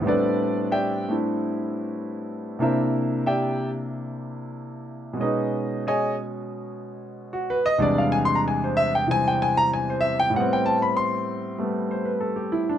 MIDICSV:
0, 0, Header, 1, 2, 480
1, 0, Start_track
1, 0, Tempo, 641711
1, 34, Time_signature, 4, 2, 24, 8
1, 2915, Tempo, 649351
1, 6275, Tempo, 629591
1, 9584, End_track
2, 0, Start_track
2, 0, Title_t, "Grand piano"
2, 0, Program_c, 0, 0
2, 9, Note_on_c, 0, 45, 57
2, 23, Note_on_c, 0, 55, 50
2, 28, Note_on_c, 0, 59, 57
2, 41, Note_on_c, 0, 60, 50
2, 52, Note_on_c, 0, 62, 64
2, 61, Note_on_c, 0, 71, 69
2, 61, Note_on_c, 0, 74, 80
2, 65, Note_on_c, 0, 69, 60
2, 492, Note_off_c, 0, 71, 0
2, 492, Note_off_c, 0, 74, 0
2, 494, Note_off_c, 0, 69, 0
2, 536, Note_on_c, 0, 76, 61
2, 539, Note_on_c, 0, 67, 68
2, 539, Note_on_c, 0, 79, 82
2, 542, Note_on_c, 0, 74, 63
2, 807, Note_off_c, 0, 60, 0
2, 813, Note_on_c, 0, 57, 43
2, 816, Note_off_c, 0, 62, 0
2, 818, Note_on_c, 0, 60, 40
2, 827, Note_on_c, 0, 62, 39
2, 833, Note_on_c, 0, 64, 49
2, 838, Note_off_c, 0, 76, 0
2, 840, Note_off_c, 0, 67, 0
2, 840, Note_off_c, 0, 79, 0
2, 842, Note_off_c, 0, 74, 0
2, 1936, Note_off_c, 0, 62, 0
2, 1936, Note_on_c, 0, 48, 53
2, 1939, Note_off_c, 0, 45, 0
2, 1940, Note_off_c, 0, 64, 0
2, 1941, Note_off_c, 0, 57, 0
2, 1943, Note_off_c, 0, 60, 0
2, 1944, Note_on_c, 0, 58, 50
2, 1945, Note_off_c, 0, 55, 0
2, 1947, Note_on_c, 0, 62, 51
2, 1948, Note_off_c, 0, 59, 0
2, 1951, Note_on_c, 0, 64, 61
2, 1958, Note_on_c, 0, 72, 50
2, 1962, Note_on_c, 0, 76, 59
2, 1965, Note_on_c, 0, 70, 56
2, 2406, Note_off_c, 0, 72, 0
2, 2408, Note_off_c, 0, 76, 0
2, 2410, Note_off_c, 0, 70, 0
2, 2441, Note_on_c, 0, 76, 66
2, 2445, Note_on_c, 0, 74, 62
2, 2446, Note_on_c, 0, 79, 79
2, 2447, Note_on_c, 0, 67, 66
2, 2756, Note_off_c, 0, 76, 0
2, 2758, Note_off_c, 0, 74, 0
2, 2759, Note_off_c, 0, 67, 0
2, 2759, Note_off_c, 0, 79, 0
2, 3829, Note_on_c, 0, 47, 54
2, 3857, Note_on_c, 0, 56, 46
2, 3870, Note_off_c, 0, 48, 0
2, 3874, Note_off_c, 0, 58, 0
2, 3875, Note_off_c, 0, 62, 0
2, 3877, Note_off_c, 0, 64, 0
2, 3880, Note_on_c, 0, 61, 45
2, 3884, Note_on_c, 0, 75, 59
2, 3886, Note_on_c, 0, 68, 48
2, 3891, Note_on_c, 0, 71, 49
2, 3892, Note_on_c, 0, 63, 48
2, 4334, Note_off_c, 0, 75, 0
2, 4335, Note_off_c, 0, 68, 0
2, 4337, Note_off_c, 0, 71, 0
2, 4338, Note_off_c, 0, 63, 0
2, 4372, Note_on_c, 0, 68, 58
2, 4378, Note_on_c, 0, 75, 68
2, 4381, Note_on_c, 0, 80, 76
2, 4382, Note_on_c, 0, 73, 59
2, 4567, Note_off_c, 0, 68, 0
2, 4570, Note_off_c, 0, 75, 0
2, 4573, Note_off_c, 0, 73, 0
2, 4573, Note_off_c, 0, 80, 0
2, 5452, Note_on_c, 0, 66, 72
2, 5579, Note_on_c, 0, 71, 85
2, 5626, Note_off_c, 0, 66, 0
2, 5685, Note_off_c, 0, 71, 0
2, 5694, Note_on_c, 0, 75, 98
2, 5773, Note_off_c, 0, 47, 0
2, 5781, Note_off_c, 0, 75, 0
2, 5787, Note_off_c, 0, 56, 0
2, 5788, Note_on_c, 0, 40, 61
2, 5790, Note_on_c, 0, 48, 53
2, 5797, Note_on_c, 0, 55, 54
2, 5798, Note_on_c, 0, 56, 58
2, 5799, Note_off_c, 0, 61, 0
2, 5800, Note_on_c, 0, 62, 65
2, 5816, Note_on_c, 0, 74, 90
2, 5935, Note_on_c, 0, 77, 79
2, 5965, Note_off_c, 0, 74, 0
2, 6037, Note_on_c, 0, 80, 92
2, 6071, Note_off_c, 0, 80, 0
2, 6105, Note_off_c, 0, 77, 0
2, 6135, Note_on_c, 0, 84, 99
2, 6210, Note_on_c, 0, 82, 81
2, 6230, Note_off_c, 0, 84, 0
2, 6265, Note_off_c, 0, 82, 0
2, 6301, Note_on_c, 0, 80, 74
2, 6425, Note_on_c, 0, 72, 58
2, 6449, Note_off_c, 0, 80, 0
2, 6523, Note_on_c, 0, 76, 100
2, 6594, Note_off_c, 0, 72, 0
2, 6638, Note_off_c, 0, 76, 0
2, 6663, Note_on_c, 0, 79, 97
2, 6740, Note_off_c, 0, 48, 0
2, 6747, Note_off_c, 0, 79, 0
2, 6752, Note_on_c, 0, 48, 45
2, 6754, Note_off_c, 0, 55, 0
2, 6758, Note_on_c, 0, 52, 47
2, 6765, Note_on_c, 0, 55, 43
2, 6776, Note_on_c, 0, 60, 53
2, 6785, Note_on_c, 0, 80, 105
2, 6911, Note_on_c, 0, 79, 88
2, 6933, Note_off_c, 0, 80, 0
2, 7021, Note_on_c, 0, 80, 97
2, 7078, Note_off_c, 0, 79, 0
2, 7128, Note_off_c, 0, 80, 0
2, 7138, Note_on_c, 0, 82, 119
2, 7225, Note_off_c, 0, 82, 0
2, 7261, Note_on_c, 0, 80, 78
2, 7385, Note_on_c, 0, 72, 60
2, 7411, Note_off_c, 0, 80, 0
2, 7467, Note_on_c, 0, 76, 99
2, 7555, Note_off_c, 0, 72, 0
2, 7591, Note_off_c, 0, 76, 0
2, 7611, Note_on_c, 0, 79, 110
2, 7690, Note_on_c, 0, 45, 60
2, 7702, Note_off_c, 0, 79, 0
2, 7708, Note_off_c, 0, 55, 0
2, 7717, Note_off_c, 0, 40, 0
2, 7718, Note_off_c, 0, 48, 0
2, 7719, Note_on_c, 0, 55, 61
2, 7721, Note_off_c, 0, 52, 0
2, 7722, Note_off_c, 0, 56, 0
2, 7723, Note_off_c, 0, 62, 0
2, 7730, Note_off_c, 0, 60, 0
2, 7739, Note_on_c, 0, 78, 86
2, 7743, Note_on_c, 0, 59, 57
2, 7771, Note_on_c, 0, 60, 72
2, 7866, Note_on_c, 0, 79, 94
2, 7890, Note_off_c, 0, 78, 0
2, 7963, Note_on_c, 0, 81, 94
2, 8034, Note_off_c, 0, 79, 0
2, 8078, Note_off_c, 0, 81, 0
2, 8090, Note_on_c, 0, 83, 80
2, 8180, Note_off_c, 0, 83, 0
2, 8199, Note_on_c, 0, 84, 90
2, 8644, Note_off_c, 0, 84, 0
2, 8658, Note_off_c, 0, 55, 0
2, 8670, Note_on_c, 0, 55, 50
2, 8676, Note_off_c, 0, 59, 0
2, 8678, Note_on_c, 0, 57, 48
2, 8687, Note_on_c, 0, 59, 53
2, 8919, Note_on_c, 0, 72, 55
2, 9028, Note_on_c, 0, 71, 51
2, 9062, Note_off_c, 0, 72, 0
2, 9144, Note_on_c, 0, 69, 53
2, 9197, Note_off_c, 0, 71, 0
2, 9262, Note_on_c, 0, 67, 58
2, 9376, Note_off_c, 0, 69, 0
2, 9384, Note_on_c, 0, 64, 65
2, 9476, Note_off_c, 0, 67, 0
2, 9516, Note_on_c, 0, 62, 57
2, 9536, Note_off_c, 0, 64, 0
2, 9584, Note_off_c, 0, 45, 0
2, 9584, Note_off_c, 0, 55, 0
2, 9584, Note_off_c, 0, 57, 0
2, 9584, Note_off_c, 0, 59, 0
2, 9584, Note_off_c, 0, 60, 0
2, 9584, Note_off_c, 0, 62, 0
2, 9584, End_track
0, 0, End_of_file